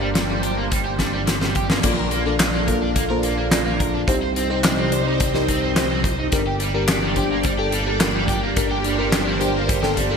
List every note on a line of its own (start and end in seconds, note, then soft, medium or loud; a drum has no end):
0.00 1.81 G1 medium
0.00 1.80 G3 medium
0.00 0.08 G3 loud
0.00 1.80 A#3 medium
0.00 1.80 D4 medium
0.00 1.81 C5 medium
0.15 0.22 G3 medium
0.15 snare loud
0.15 closed hi-hat loud
0.29 0.40 G3 medium
0.43 0.54 G4 loud
0.43 closed hi-hat medium
0.57 0.64 A#3 medium
0.71 0.78 G3 loud
0.71 kick loud
0.71 closed hi-hat loud
0.85 0.92 G4 loud
0.99 1.10 G3 medium
0.99 kick medium
0.99 snare medium
0.99 closed hi-hat medium
1.13 1.21 G3 loud
1.27 1.35 G3 medium
1.27 snare medium
1.27 closed hi-hat loud
1.41 1.52 G3 medium
1.41 snare medium
1.55 1.66 G4 loud
1.55 kick loud
1.55 closed hi-hat medium
1.70 1.77 A#3 medium
1.70 snare medium
1.83 4.05 A#1 medium
1.83 1.91 A#3 loud
1.83 1.96 A#3 loud
1.83 4.06 D4 medium
1.83 1.96 D4 medium
1.83 4.06 F4 medium
1.83 1.96 F4 medium
1.83 1.96 A4 medium
1.83 1.96 D5 loud
1.83 kick loud
1.83 closed hi-hat loud
1.83 crash loud
1.98 2.05 A#4 loud
2.11 2.22 A#3 medium
2.11 closed hi-hat medium
2.26 2.33 A#3 loud
2.26 2.65 A#3 loud
2.26 2.65 D4 medium
2.26 2.65 F4 medium
2.26 2.65 A4 medium
2.26 2.65 D5 loud
2.40 2.47 A#3 medium
2.40 snare loud
2.40 clap loud
2.40 closed hi-hat loud
2.54 2.64 A#3 medium
2.68 3.07 A#3 medium
2.68 3.07 D4 medium
2.68 3.07 F4 medium
2.68 3.07 A4 medium
2.68 2.78 A#4 loud
2.68 3.07 F5 loud
2.68 kick medium
2.68 closed hi-hat medium
2.82 2.89 D4 medium
2.96 3.03 A#3 loud
2.96 kick loud
2.96 closed hi-hat loud
3.10 3.49 A#3 loud
3.10 3.49 D4 medium
3.10 3.49 F4 medium
3.10 3.49 A4 medium
3.10 3.17 A#4 loud
3.10 3.49 C5 loud
3.23 3.34 A#3 medium
3.23 closed hi-hat medium
3.38 3.45 A#3 loud
3.51 3.59 A#3 medium
3.51 4.05 A#3 medium
3.51 4.05 D4 medium
3.51 4.05 F4 medium
3.51 4.05 A4 medium
3.51 4.05 D5 medium
3.51 snare loud
3.51 clap loud
3.51 closed hi-hat loud
3.66 3.77 A#3 medium
3.80 3.91 A#4 loud
3.80 kick loud
3.80 closed hi-hat medium
3.94 4.01 D4 medium
4.08 6.29 C2 medium
4.08 6.30 G3 medium
4.08 6.30 C4 medium
4.08 4.15 C4 loud
4.08 6.30 D#4 medium
4.08 4.20 D#4 medium
4.08 4.20 G4 medium
4.08 6.30 C5 medium
4.08 4.20 C5 loud
4.08 kick loud
4.08 closed hi-hat medium
4.22 4.29 C5 loud
4.36 4.47 C4 medium
4.36 closed hi-hat medium
4.50 4.57 C4 loud
4.50 4.89 D#4 loud
4.50 4.89 G4 medium
4.50 4.89 C5 loud
4.64 4.71 C4 medium
4.64 snare loud
4.64 clap medium
4.64 closed hi-hat loud
4.78 4.89 C4 medium
4.92 5.31 D#4 medium
4.92 5.31 G4 medium
4.92 5.03 C5 loud
4.92 5.31 D5 loud
4.92 closed hi-hat medium
5.06 5.13 D#4 medium
5.20 5.27 C4 loud
5.20 kick loud
5.20 closed hi-hat loud
5.34 5.73 D#4 medium
5.34 5.73 G4 medium
5.34 5.73 A#4 loud
5.34 5.41 C5 loud
5.34 snare soft
5.48 5.59 C4 medium
5.48 kick medium
5.48 closed hi-hat medium
5.62 5.69 C4 loud
5.76 5.83 C4 medium
5.76 6.29 D#4 medium
5.76 6.29 G4 medium
5.76 6.29 C5 medium
5.76 snare loud
5.76 clap medium
5.76 closed hi-hat loud
5.90 6.01 C4 medium
6.04 6.15 C5 loud
6.04 kick loud
6.04 closed hi-hat medium
6.18 6.25 D#4 medium
6.32 10.17 G1 medium
6.32 6.39 G3 loud
6.32 10.17 A#3 medium
6.32 6.44 D4 loud
6.32 10.17 D4 medium
6.32 6.44 G4 medium
6.32 10.17 G4 medium
6.32 6.44 A#4 loud
6.32 8.54 D5 medium
6.32 kick loud
6.32 closed hi-hat medium
6.47 6.53 G4 loud
6.60 6.71 G3 medium
6.60 closed hi-hat medium
6.74 6.81 G3 loud
6.74 7.13 D4 medium
6.74 7.13 G4 medium
6.74 7.13 A#4 loud
6.88 6.95 G3 medium
6.88 snare loud
6.88 clap loud
6.88 closed hi-hat loud
7.03 7.13 G3 medium
7.16 7.55 D4 loud
7.16 7.55 G4 medium
7.16 7.27 G4 loud
7.16 7.55 C5 loud
7.16 kick medium
7.16 closed hi-hat medium
7.31 7.38 A#3 medium
7.43 7.52 G3 loud
7.43 kick loud
7.43 closed hi-hat medium
7.59 7.97 D4 loud
7.59 7.66 G4 loud
7.59 7.97 G4 medium
7.59 7.97 A4 loud
7.72 7.83 G3 medium
7.72 closed hi-hat medium
7.87 7.94 G3 loud
8.00 8.08 G3 medium
8.00 8.53 D4 medium
8.00 8.53 G4 medium
8.00 8.53 A#4 medium
8.00 snare loud
8.00 clap loud
8.00 closed hi-hat loud
8.15 8.25 G3 medium
8.28 8.39 G4 loud
8.28 kick loud
8.28 closed hi-hat medium
8.43 8.50 A#3 medium
8.57 8.64 G3 loud
8.57 8.69 D4 medium
8.57 8.69 G4 medium
8.57 8.69 A#4 loud
8.57 10.17 C5 medium
8.57 kick loud
8.57 closed hi-hat medium
8.71 8.78 G4 loud
8.84 8.95 G3 medium
8.84 closed hi-hat medium
8.99 9.06 G3 loud
8.99 9.37 D4 loud
8.99 9.37 G4 medium
8.99 9.37 A#4 loud
9.12 9.20 G3 medium
9.12 snare loud
9.12 clap loud
9.12 closed hi-hat loud
9.27 9.37 G3 medium
9.41 9.79 D4 medium
9.41 9.79 G4 medium
9.41 9.51 G4 loud
9.41 9.79 C5 loud
9.41 closed hi-hat medium
9.55 9.62 A#3 medium
9.69 9.76 G3 loud
9.69 kick loud
9.69 closed hi-hat loud
9.83 10.08 D4 medium
9.83 9.90 G4 loud
9.83 10.08 G4 medium
9.83 10.08 A4 loud
9.83 snare soft
9.97 10.07 G3 medium
9.97 kick medium
9.97 closed hi-hat medium
10.11 10.17 G3 loud
10.11 10.17 D4 medium
10.11 10.17 G4 medium
10.11 10.17 A4 medium